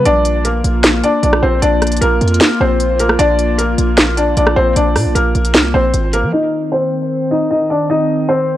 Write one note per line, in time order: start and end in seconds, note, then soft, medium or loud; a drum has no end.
0.05 0.62 A#1 loud
0.05 6.29 A#3 medium
0.05 0.43 D4 medium
0.05 6.29 F4 loud
0.05 0.42 D5 loud
0.05 closed hi-hat medium
0.25 closed hi-hat medium
0.45 1.00 A#3 medium
0.45 1.00 A#4 medium
0.45 closed hi-hat medium
0.64 1.02 A#1 loud
0.64 closed hi-hat medium
0.84 snare loud
0.84 closed hi-hat medium
1.04 1.20 D4 medium
1.04 1.20 D5 medium
1.04 closed hi-hat medium
1.23 1.42 A#1 loud
1.23 1.40 D4 medium
1.23 1.39 D5 medium
1.23 closed hi-hat medium
1.33 cross-stick loud
1.43 1.61 A#1 loud
1.43 1.59 C4 medium
1.43 1.59 C5 medium
1.62 2.00 A#1 loud
1.62 1.99 D4 medium
1.62 1.99 D5 loud
1.62 closed hi-hat medium
1.82 cross-stick medium
1.82 closed hi-hat medium
1.82 open hi-hat medium
1.87 closed hi-hat medium
1.92 closed hi-hat medium
1.97 closed hi-hat medium
2.01 2.20 A#1 loud
2.01 2.57 A#3 medium
2.01 2.57 A#4 medium
2.01 closed hi-hat medium
2.21 2.40 F2 loud
2.21 closed hi-hat soft
2.28 closed hi-hat medium
2.34 closed hi-hat medium
2.41 snare loud
2.41 closed hi-hat medium
2.60 3.17 A#1 loud
2.60 2.98 C4 medium
2.60 2.97 C5 medium
2.80 closed hi-hat medium
3.00 3.16 A#3 medium
3.00 3.16 A#4 medium
3.00 closed hi-hat medium
3.09 cross-stick loud
3.19 3.76 A#1 loud
3.19 3.56 D4 medium
3.19 3.56 D5 loud
3.19 closed hi-hat medium
3.39 closed hi-hat medium
3.58 4.14 A#3 medium
3.58 4.14 A#4 medium
3.58 closed hi-hat medium
3.78 4.35 A#1 loud
3.78 closed hi-hat medium
3.98 snare loud
3.98 closed hi-hat medium
4.17 4.34 D4 medium
4.17 4.33 D5 medium
4.17 closed hi-hat medium
4.37 4.56 A#1 loud
4.37 4.54 D4 medium
4.37 4.53 D5 medium
4.37 closed hi-hat medium
4.47 cross-stick loud
4.56 4.75 A#1 loud
4.56 4.73 C4 medium
4.56 4.73 C5 medium
4.76 4.97 A#1 loud
4.76 5.13 D4 medium
4.76 5.13 D5 medium
4.76 closed hi-hat medium
4.96 5.07 A#2 loud
4.96 cross-stick medium
4.96 open hi-hat medium
5.06 5.15 A#1 loud
5.15 5.34 A#1 loud
5.15 5.71 A#3 medium
5.15 5.70 A#4 medium
5.15 closed hi-hat medium
5.35 5.56 A#1 loud
5.35 closed hi-hat soft
5.45 closed hi-hat medium
5.54 5.73 C2 loud
5.54 snare loud
5.54 closed hi-hat medium
5.74 5.93 A#1 loud
5.74 6.11 C4 medium
5.74 6.11 C5 medium
5.94 6.25 G#1 loud
5.94 closed hi-hat medium
6.13 6.30 A#3 medium
6.13 6.30 A#4 medium
6.13 closed hi-hat medium
6.23 6.32 F3 loud
6.33 8.57 D#3 medium
6.33 8.57 C4 medium
6.33 6.70 D#4 medium
6.33 6.70 D#5 loud
6.72 7.28 C4 medium
6.72 7.27 C5 medium
7.31 7.48 D#4 medium
7.31 7.47 D#5 medium
7.51 7.67 D#4 medium
7.51 7.67 D#5 medium
7.70 7.87 D4 medium
7.70 7.86 D5 medium
7.90 8.27 D#4 medium
7.90 8.27 D#5 medium
8.29 8.57 C4 medium
8.29 8.57 C5 medium